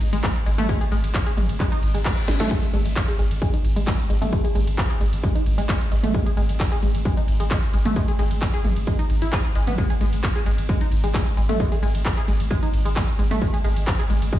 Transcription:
0.01 G#1, open hi-hat, ride
0.13 G#1 G#3, closed hi-hat, ride
0.24 G#3, kick, clap, closed hi-hat, ride
0.36 closed hi-hat, ride
0.46 G#1 G#3, open hi-hat, ride
0.58 G#1 A3, closed hi-hat, mid tom, ride
0.69 G#3, kick, closed hi-hat, ride
0.81 G#4, closed hi-hat, ride
0.92 G#1 G#3, open hi-hat, ride
1.04 G#1, closed hi-hat, ride
1.14 kick, clap, closed hi-hat, ride
1.26 G#4, closed hi-hat, ride
1.37 G#1 G#3, mid tom, open hi-hat, ride
1.49 G#1, closed hi-hat, ride
1.60 G#3, kick, clap, closed hi-hat, ride, reverse cymbal
1.72 D#4, closed hi-hat, ride
1.83 G#1, open hi-hat, ride
1.94 G#1 G#3, closed hi-hat, ride
2.05 G#3, kick, clap, closed hi-hat, ride
2.17 closed hi-hat, ride
2.28 G#1 G#3, snare, open hi-hat, ride
2.40 G#1 A3, snare, closed hi-hat, mid tom, ride
2.51 G#3, kick, closed hi-hat, crash, ride
2.63 G#4, closed hi-hat, ride
2.74 G#1 G#3, open hi-hat, ride
2.86 G#1, closed hi-hat, ride
2.96 kick, clap, closed hi-hat, ride
3.08 G#4, closed hi-hat, ride
3.19 G#1 G#3, open hi-hat, ride
3.31 G#1, closed hi-hat, ride
3.42 G#3, kick, closed hi-hat, ride
3.54 D#4, closed hi-hat, ride
3.65 G#1, open hi-hat, ride
3.76 G#1 G#3, closed hi-hat, ride
3.87 G#3, kick, clap, closed hi-hat, ride
3.99 closed hi-hat, ride
4.10 G#1 G#3, open hi-hat, ride
4.22 G#1 A3, closed hi-hat, mid tom, ride
4.33 G#3, kick, closed hi-hat, ride
4.44 G#4, closed hi-hat, ride
4.55 G#1 G#3, open hi-hat, ride
4.67 G#1, closed hi-hat, ride
4.78 kick, clap, closed hi-hat, ride
4.90 G#4, closed hi-hat, ride
5.01 G#1 G#3, open hi-hat, ride
5.13 G#1, closed hi-hat, ride
5.23 G#3, kick, closed hi-hat, ride
5.35 D#4, closed hi-hat, ride
5.46 G#1, open hi-hat, ride
5.58 G#1 G#3, closed hi-hat, ride
5.69 G#3, kick, clap, closed hi-hat, ride
5.81 closed hi-hat, ride
5.92 G#1 G#3, open hi-hat, ride
6.03 G#1 A3, closed hi-hat, mid tom, ride
6.14 G#3, kick, closed hi-hat, ride
6.26 G#4, closed hi-hat, ride
6.37 G#1 G#3, open hi-hat, ride
6.49 G#1, closed hi-hat, ride
6.60 kick, clap, closed hi-hat, ride
6.72 G#4, closed hi-hat, ride
6.83 G#1 G#3, open hi-hat, ride
6.95 G#1, closed hi-hat, ride
7.05 G#3, kick, closed hi-hat, ride
7.17 D#4, closed hi-hat, ride
7.28 G#1, open hi-hat, ride
7.40 G#1 G#3, closed hi-hat, ride
7.51 G#3, kick, clap, closed hi-hat, ride
7.63 closed hi-hat, ride
7.74 G#1 G#3, open hi-hat, ride
7.85 G#1 A3, closed hi-hat, mid tom, ride
7.96 G#3, kick, closed hi-hat, ride
8.08 G#4, closed hi-hat, ride
8.19 G#1 G#3, open hi-hat, ride
8.31 G#1, closed hi-hat, ride
8.42 kick, clap, closed hi-hat, ride
8.54 G#4, closed hi-hat, ride
8.65 G#1 G#3, mid tom, open hi-hat, ride
8.76 G#1, closed hi-hat, ride
8.87 G#3, kick, closed hi-hat, ride
8.99 D#4, closed hi-hat, ride
9.10 G#1, open hi-hat, ride
9.22 G#1 E4, closed hi-hat, ride
9.33 G#4, kick, clap, closed hi-hat, ride
9.45 closed hi-hat, ride
9.55 G#1 G#3, open hi-hat, ride
9.67 G#1 B3, closed hi-hat, mid tom, ride
9.78 G#3, kick, closed hi-hat, ride
9.90 G#4, closed hi-hat, ride
10.01 G#1 G#3, open hi-hat, ride
10.13 G#1, closed hi-hat, ride
10.24 kick, clap, closed hi-hat, ride
10.36 G#4, closed hi-hat, ride
10.46 G#1 G#3, open hi-hat, ride
10.58 G#1, closed hi-hat, ride
10.69 G#3, kick, closed hi-hat, ride
10.81 D#4, closed hi-hat, ride
10.92 G#1, open hi-hat, ride
11.04 G#1 G#3, closed hi-hat, ride
11.14 G#3, kick, clap, closed hi-hat, ride
11.26 closed hi-hat, ride
11.37 G#1 G#3, open hi-hat, ride
11.49 G#1 A3, closed hi-hat, mid tom, ride
11.60 G#3, kick, closed hi-hat, ride
11.72 G#4, closed hi-hat, ride
11.83 G#1 G#3, open hi-hat, ride
11.94 G#1, closed hi-hat, ride
12.05 kick, clap, closed hi-hat, ride
12.17 G#4, closed hi-hat, ride
12.28 G#1 G#3, open hi-hat, ride
12.40 G#1, closed hi-hat, ride
12.51 G#3, kick, closed hi-hat, ride
12.63 D#4, closed hi-hat, ride
12.74 G#1, open hi-hat, ride
12.85 G#1 G#3, closed hi-hat, ride
12.96 G#3, kick, clap, closed hi-hat, ride
13.08 closed hi-hat, ride
13.19 G#1 G#3, open hi-hat, ride
13.31 G#1 A3, closed hi-hat, mid tom, ride
13.42 G#3, kick, closed hi-hat, ride
13.54 G#4, closed hi-hat, ride
13.64 G#1 G#3, open hi-hat, ride
13.76 G#1, closed hi-hat, ride
13.87 kick, clap, closed hi-hat, ride
13.99 G#4, closed hi-hat, ride
14.10 G#1 G#3, open hi-hat, ride
14.22 G#1, closed hi-hat, ride
14.33 G#3, kick, closed hi-hat, ride

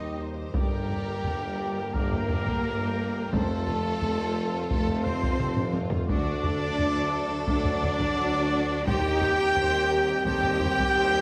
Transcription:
Already playing: D#2 D#3 G3 D#4 G4 D#5 D#6
0.01 G4 D#5
0.19 D#4 C5
0.36 G4 D#5
0.53 G1 G2 D3 G3 A#3 G4 A#4 D5 G5, taiko
0.71 A#4 G5
0.89 G4 D5, taiko low
1.06 A#4 G5
1.23 G1 G2 G4 D5, taiko low
1.41 A#4 G5
1.59 G4 D5
1.77 A#4 G5
1.92 G1 G2 A#3 G4 A#4 A#5, taiko
1.96 G4 D5
2.12 A#4 G5, taiko low
2.29 G4 D5, taiko low
2.47 A#4 G5, taiko
2.62 G1 G2 G4 A#4
2.66 D5
2.83 A#4 G5
3.01 G4 D5
3.17 A#4 G5
3.31 F1 F2 F3 A3 A4 C5 A5, taiko
3.35 C4 A4
3.51 F4 C5
3.65 C4 F4 A4, taiko low
3.86 F4 C5
4.01 F1 F2 C4 A4, taiko low
4.19 F4 C5
4.36 C4 A4
4.54 F4 C5
4.70 F1 F2 A3 C4 A4 A5, taiko
4.88 F4 C5, taiko low
5.03 C4 A4 C5 C6, taiko low
5.23 F4 C5, taiko
5.39 F1 F2 C4 A4, taiko mid
5.57 F4 C5, taiko low-mid
5.73 C4 F4 A4, taiko low-mid
5.91 F4 C5, taiko low
6.08 D2 F#3 D4 F#4 A4 D5 D6, taiko
6.27 F#4 D5
6.44 D4 A4, taiko low
6.61 F#4 D5
6.78 D2 D4 A4, taiko low
6.96 F#4 D5
7.12 D4 A4
7.29 F#4 D5
7.47 D2 D4 A4 D5 D6, taiko
7.65 F#4 D5, taiko low
7.82 D4 A4, taiko low
8.00 F#4 D5, taiko
8.16 D2 D4 F#4 A4
8.35 F#4 D5
8.52 D4 A4
8.70 F#4 D5
8.86 D#2 G3 C4 D#4 G4 C5 G5 G6, taiko
9.04 G4 D#5
9.22 D#4 C5, taiko low
9.40 G4 D#5
9.57 D#2 D#4 C5, taiko low
9.75 G4 D#5
9.90 D#4 A#4 C5
10.09 G4 D#5
10.25 D#2 D#4 G4 A4 C5 G5 G6, taiko
10.43 G4 D#5, taiko low
10.60 D#4 G4 C5, taiko low
10.77 G4 D#5, taiko
10.94 D#2 D#4 C5
11.12 G4 D#5

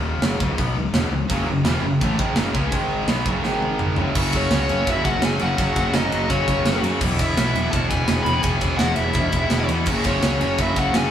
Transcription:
Already playing: D#1 D#2 A#2 D#3
0.21 F#1 F#2 C#3 F#3, snare, crash
0.40 C#1 C#2 G#2 C#3, kick
0.57 B1 B2 F#3 B3, kick, crash
0.75 C#1 C#2 G#2
0.92 E1 E2 B2 E3, snare, crash
1.10 C#1 C#2 G#2
1.29 F#1 F#2 C#3 F#3, kick, crash
1.47 F#1 F#2 C#3
1.63 E1 E2 B2 E3, snare, crash
1.67 E3
1.81 F#1 F#2 C#3
2.01 A1 A2 E3 A3, kick, crash
2.18 G#1 G#2 D#3 G#3, kick
2.35 F#1 F#2 C#3 F#3, snare, crash
2.54 C#2 C#3 G#3 C#4, kick
2.72 G#1 G#2 D#3 G#3, kick, crash
3.06 B1 B2 F#3 B3, snare, crash
3.25 F#1 F#2 C#3 F#3, kick
3.42 G#1 G#2 D#3 G#3, snare
3.62 high tom
3.79 mid tom
3.96 F#1 F#2 C#3 F#3, floor tom
4.15 F#1 F#2 C#3 F#3 C#4 F#4, kick, crash
4.23 C#4 F#4
4.31 F#2 C#3 C#4 F#4, kick, ride
4.35 F#3 C#4 F#4 C#5
4.46 C#2 C#4 F#4
4.51 F#2 C#3 F#3 F#4, snare, ride
4.55 C#4
4.62 C#4 F#4
4.68 F#1 F#2 C#3 F#3 C#4 F#4, ride
4.77 C#4 F#4
4.86 F#1 F#2 C#3 F#3 C#4 E4 F#4, kick, ride
4.90 C#4 F#4 E5
5.02 F#1 C#4 F#4 F#5, kick, ride
5.06 F#2 C#3 F#3 C#4 F#4
5.17 C#4 F#4
5.21 F#1 F#2 C#3 F#3 C#4 G#4 G#5, snare, ride
5.26 F#4
5.32 C#4 F#4
5.39 F#1 F#2 C#3 F#3 C#4 F#4 F#5, ride
5.48 C#4 F#4
5.57 F#1 F#2 C#3 F#3 C#4 F#4, kick, ride
5.65 C#4 F#4
5.72 F#1 C#4 F#4, ride
5.76 F#2 C#3 F#3 C#4, kick
5.81 F#4
5.87 C#4 F#4
5.94 F#1 F#2 C#3 F#3 C#4 D#4 F#4 D#5, snare, ride
6.02 C#4 F#4
6.09 F#1 F#2 C#3 C#4 F#4, ride
6.14 F#3 C#4 F#4
6.25 C#4 F#4
6.29 F#1 F#2 C#3 F#3 C#4 C#5, kick, ride
6.34 F#4
6.40 C#4 F#4
6.47 F#1 F#2 C#3 F#3 C#4 F#4, kick, ride
6.55 C#4 F#4
6.63 F#1 F#2 C#4 F#4, snare, ride
6.67 C#3 F#3 C#4 F#4
6.79 F#2 C#4 F#4
6.84 F#2 C#3 F#3 C#4 F#4, ride
6.92 C#4 F#4
7.00 E1 E2 B2 E3 B3 E4, kick, crash
7.08 B3 E4
7.16 B3 E4, kick, ride
7.20 E2 B2 E3 B3 E4 E5
7.24 E4
7.30 B3 E4
7.36 B1 E2 B2 E3 B3 E4, snare, ride
7.45 B3 E4
7.53 E1 E2 B2 E3 B3 E4, ride
7.60 B3 E4
7.68 B3 E4 A4 A5
7.73 E1 E2 B2 E3 B3 E4, kick, ride
7.83 B3 E4
7.88 E1 E2 B2 B3 E4 G#4 G#5, kick, ride
7.92 E3
7.98 B3 E4
8.05 E1 E2 B2 E3 B3 E4, snare, ride
8.13 B3 E4
8.21 E1 B3 E4 B4 B5
8.26 E2 B2 E3 B3 E4, ride
8.35 B3 E4
8.42 E1 E2 B2 E3 B3 E4 G#4 G#5, kick, ride
8.52 B3 E4
8.59 E1 E2 B3 E4, kick, ride
8.63 B2 E3 B3
8.69 E4
8.75 E1 B3 E4 F#4 F#5, snare, ride
8.81 E2 B2 E3 B3 E4
8.89 B3 E4
8.95 E1 E2 B2 E3 B3 E4 E5, ride
9.00 E4
9.04 B3
9.09 B3 E4
9.13 E1 E2 B2 E3 E4, kick, ride
9.20 B3 E4
9.28 B3
9.32 E1 E2 B2 E3 B3 E4, kick, ride
9.41 B3 E4
9.47 E1 B3 E4, snare, ride
9.51 E2 B2 E3
9.56 B3 E4
9.64 B3 E4
9.68 E2 B2 E3 E4, ride
9.73 B3
9.79 B3 E4
9.86 F#1 F#2 C#3 F#3 C#4 F#4, kick, crash
9.93 C#4 F#4
10.01 F#2 C#4 F#4, kick, ride
10.05 C#3 F#3 C#4 C#5
10.10 C#4 F#4
10.19 C#2 C#4 F#4, snare, ride
10.24 F#2 C#3 F#3 C#4 F#4
10.35 C#4 F#4
10.40 F#1 F#2 C#3 F#3 C#4 F#4, ride
10.50 C#4 F#4
10.58 F#1 F#2 C#3 F#3 C#4 E4 F#4 E5, kick, ride
10.65 C#4 F#4
10.73 F#1 C#4 F#4, kick, ride
10.78 F#2 C#3 F#3 C#4 F#4 F#5
10.88 C#4 F#4
10.93 F#1 F#2 C#3 F#3 C#4 G#4 G#5, snare, ride
10.98 F#4
11.04 C#4 F#4

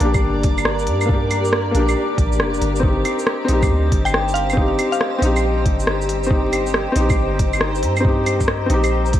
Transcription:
Already playing: A#3 D4 G4 A#4 D5 A#5 D6
0.00 A#1 D4, open hi-hat
0.05 G4
0.14 kick, claves, shaker
0.22 G1
0.43 kick, open hi-hat
0.58 claves, shaker
0.65 cross-stick
0.79 shaker
0.87 G2, open hi-hat
1.01 claves, shaker
1.06 A#3 D4, kick
1.14 G4
1.31 open hi-hat, claves, shaker
1.45 shaker
1.53 cross-stick
1.71 A#1 A#3 D4, open hi-hat
1.79 G4
1.89 claves, shaker
2.18 A1, kick, open hi-hat
2.32 shaker
2.40 F1, cross-stick
2.54 shaker
2.61 G1, open hi-hat
2.76 C4, shaker
2.83 G1 D#4 C5 G5 C6, kick
2.88 G4
3.05 open hi-hat, claves, shaker
3.19 shaker
3.27 cross-stick
3.45 C4, open hi-hat
3.49 A#1 D#4
3.53 G4
3.63 kick, claves, shaker
3.70 D2
3.92 G1, kick, open hi-hat
4.05 G5, claves, shaker
4.14 cross-stick
4.28 shaker
4.34 F5, open hi-hat
4.50 C4, claves, shaker
4.57 D#4, kick
4.61 G4
4.79 open hi-hat, claves, shaker
4.92 F5, shaker
5.01 cross-stick
5.18 A#1 C4 D#4, open hi-hat
5.26 G4
5.36 claves, shaker
5.65 G1, kick, open hi-hat
5.80 shaker
5.87 cross-stick
6.02 shaker
6.09 open hi-hat
6.24 C4, shaker
6.30 D#4 A#5, kick
6.35 G4
6.53 open hi-hat, claves, shaker
6.67 shaker
6.74 cross-stick
6.92 A#1 C4, open hi-hat
6.96 D#4 G4
7.10 kick, claves, shaker
7.18 G1
7.39 kick, open hi-hat
7.53 claves, shaker
7.61 cross-stick
7.75 shaker
7.83 G2, open hi-hat
7.97 C4, claves, shaker
8.05 D#4 G4, kick
8.26 open hi-hat, claves, shaker
8.41 kick, shaker
8.48 cross-stick
8.66 A#1 C4 D#4, open hi-hat
8.74 G4
8.84 open hi-hat, claves, shaker
9.06 shaker
9.13 A1, kick, open hi-hat

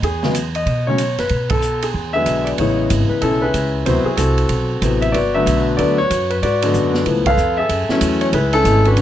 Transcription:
0.02 E2 G#4, kick, ride
0.23 C#3 F#3 G#3 B3, snare
0.35 hi-hat pedal, ride
0.55 D#5, ride
0.66 B2, kick, ride
0.87 C#3 F#3 G#3 C#4 C#5
0.98 hi-hat pedal, ride
1.19 F#2 B4, snare, ride
1.29 B2, kick, ride
1.50 A4, kick, ride
1.62 hi-hat pedal
1.82 G#4, ride
1.94 E2, kick
2.13 D3 F#3 G#3 B3 G#4 B4 E5
2.26 B1, hi-hat pedal, ride
2.45 D5, ride
2.58 A1 C#3 E3 G#3 B3 E4 G#4 C#5, kick, ride
2.90 G#1, kick, hi-hat pedal, ride
3.09 B4, muted upright bass stroke
3.22 B1 C#4 E4 A4, kick, ride
3.42 E4 G#4 B4
3.54 C#2, kick, hi-hat pedal, ride
3.86 D2 C3 E3 F#3 B3 E4 F#4 C5, kick, ride
4.05 G#4, muted upright bass stroke
4.17 C2 C4 F#4 A4, kick, hi-hat pedal, ride
4.38 ride
4.49 B1, kick, ride
4.82 A1 C3 E3 F#3 B3, kick, hi-hat pedal, ride
5.02 E5, ride
5.12 G1 F#4 B4 D5, kick, ride
5.34 D3 F#3 A3 B3 B4 E5
5.46 B1, kick, hi-hat pedal, ride
5.77 D2 D3 F#3 A3 B3 F#4 B4 D5, kick, ride
5.98 F#4 C#5
6.10 F#2, kick, hi-hat pedal, ride
6.30 B4, ride
6.43 G#2 F#4 B4 D5, kick, ride
6.62 D3 F#3 G#3 B3, ride
6.74 F#2, kick, hi-hat pedal
6.94 snare
7.05 C#2 E3 F3 A3 B3, kick, ride
7.26 A4 B4 F5, kick, ride
7.37 F2, hi-hat pedal
7.57 G#4 A4 E5
7.69 F#2, kick, ride
7.89 E3 F#3 A3 C#4, muted upright bass stroke, snare
8.01 E2, kick, hi-hat pedal, ride
8.21 C#5, ride
8.33 C#2 E4 G#4 B4, kick, ride
8.53 C#4 E4 A4, ride
8.64 G#1 E3 G#3 A3 E4, kick, hi-hat pedal, ride
8.85 D4 F#4 B4, ride
8.96 B1 D3 F#3 A3, kick, ride

